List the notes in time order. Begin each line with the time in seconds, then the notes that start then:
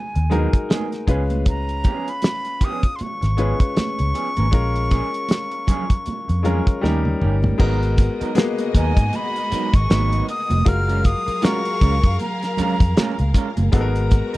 Already playing: G#3 D#4 F#4 B4 G#5
0.15 D#2, muted clean electric guitar stroke, closed hi-hat
0.30 F#3 G#3 B3 D#4 F#4 G#4 A#4, closed hi-hat, low conga
0.53 kick, closed hi-hat
0.69 F#3 B3 D#4 G#4, snare, closed hi-hat, high conga
0.91 muted clean electric guitar stroke, snare, closed hi-hat
1.07 C#2 F3 G#3 B3 C#4 F4 G#4 B4, kick, closed hi-hat
1.29 muted clean electric guitar stroke, closed hi-hat, high conga
1.46 A#5, kick, closed hi-hat, muted conga
1.69 closed hi-hat
1.84 F3 B3 C#4 G#4, kick, closed hi-hat, muted conga
2.08 B5, closed hi-hat
2.22 muted clean electric guitar stroke, snare, closed hi-hat, high conga
2.44 muted clean electric guitar stroke, closed hi-hat
2.60 F3 B3 C#4 G#4, kick, closed hi-hat
2.65 D#6
2.83 muted clean electric guitar stroke, kick, closed hi-hat
2.96 C6, closed hi-hat
3.01 C#6, muted fingered electric bass stroke, muted conga
3.21 G#1, muted clean electric guitar stroke, snare, closed hi-hat
3.37 F3 G#3 B3 C#4 F4 G#4 B4, closed hi-hat
3.59 muted clean electric guitar stroke, kick, closed hi-hat
3.76 muted clean electric guitar stroke, muted fingered electric bass stroke, snare, closed hi-hat, high conga
3.98 C#2, muted clean electric guitar stroke, closed hi-hat
4.14 F3 B3 C#4 G#4, closed hi-hat
4.37 G#1 F3 B3 C#4 A#4, closed hi-hat, high conga
4.51 A#1 G#3 C#4 F4 A#4, kick, closed hi-hat
4.76 closed hi-hat
4.91 F3 A#3 C#4 G#4, kick, closed hi-hat, muted conga
5.14 closed hi-hat
5.29 muted clean electric guitar stroke, snare, closed hi-hat, high conga
5.51 muted clean electric guitar stroke, closed hi-hat
5.67 F3 A#3 C#4 G#4, kick, closed hi-hat, low conga
5.90 muted clean electric guitar stroke, kick, closed hi-hat
6.06 muted fingered electric bass stroke, closed hi-hat, muted conga
6.28 F2, muted clean electric guitar stroke, closed hi-hat
6.43 F3 G#3 A#3 C#4 F4 G#4 A#4, closed hi-hat, low conga
6.67 kick, closed hi-hat
6.81 D#2 D#3 G3 A#3 C#4 D#4 G4 A#4, snare, high conga
7.05 muted clean electric guitar stroke, high tom
7.22 G1 D#3 A#3 C#4 G4, mid tom
7.43 muted clean electric guitar stroke, floor tom, high conga
7.58 G#1 F#3 G#3 B3 D#4 F#4 G#4 A#4 D#5, kick, crash, muted conga
7.83 closed hi-hat
7.98 muted clean electric guitar stroke, kick, closed hi-hat, muted conga
8.20 F#3 B3 D#4 A#4, muted fingered electric bass stroke, closed hi-hat
8.35 G#3 A#3 B3 F#4, muted clean electric guitar stroke, snare, closed hi-hat, high conga
8.58 muted clean electric guitar stroke, closed hi-hat
8.75 D#2 F#3 B3 D#4 A#4 G#5, kick, closed hi-hat
8.97 G#2, kick, closed hi-hat
9.13 B5, muted clean electric guitar stroke, closed hi-hat, muted conga
9.35 muted clean electric guitar stroke, closed hi-hat
9.51 F#3 B3 D#4 A#4, muted fingered electric bass stroke, closed hi-hat
9.74 G#1 C#6, muted clean electric guitar stroke, kick, closed hi-hat
9.90 G#1 F#3 B3 D#4 B4, snare, closed hi-hat, high conga
10.12 closed hi-hat
10.28 D#6, muted clean electric guitar stroke, closed hi-hat
10.50 F1, muted clean electric guitar stroke, closed hi-hat, high conga
10.65 F#1 F#3 G#3 F4 F#4 G#4 A#4 F5 F6, muted clean electric guitar stroke, kick, closed hi-hat
10.88 G#3 C#4 F4 A#4, closed hi-hat
11.04 D#6, muted clean electric guitar stroke, kick, closed hi-hat, muted conga
11.27 muted clean electric guitar stroke, muted fingered electric bass stroke, closed hi-hat
11.41 G#3 C#4 F4 F#4 A#4 C#6, snare, closed hi-hat, high conga
11.65 muted clean electric guitar stroke, closed hi-hat
11.81 C#2 G#3 C#4 F4 A#4, kick, closed hi-hat
12.04 F#2, muted clean electric guitar stroke, kick, closed hi-hat
12.19 A#5, closed hi-hat, muted conga
12.42 muted clean electric guitar stroke, snare, closed hi-hat
12.57 G#3 C#4 F4 A#4, muted fingered electric bass stroke, closed hi-hat, low conga
12.80 F2, kick, closed hi-hat
12.96 G#3 C#4 F4 A#4, muted fingered electric bass stroke, snare, closed hi-hat, high conga
13.19 C#2, muted clean electric guitar stroke, closed hi-hat
13.34 G#3 C#4 F4 A#4, kick, closed hi-hat
13.57 F#1, muted clean electric guitar stroke, closed hi-hat, high conga
13.72 G#1 F#3 G#3 B3 D#4 F#4 A4 A#4 A#5, kick, closed hi-hat
13.81 A#4
13.96 closed hi-hat
14.11 muted clean electric guitar stroke, kick, closed hi-hat, muted conga
14.33 B3 D#4 A#4, closed hi-hat